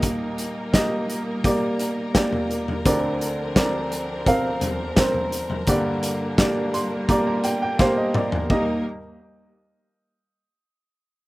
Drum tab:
HH |x-x-x-x-x-x-x-x-|x-x-x-x-x-x-x-x-|x-x-x-x-x-x-----|----------------|
SD |----o-------o---|----o-------o---|----o-------o---|----------------|
T2 |----------------|----------------|--------------o-|----------------|
FT |-------------o-o|----------o--o-o|---------------o|----------------|
BD |o---o---o---o---|o---o---o---o---|o---o---o---o---|o---------------|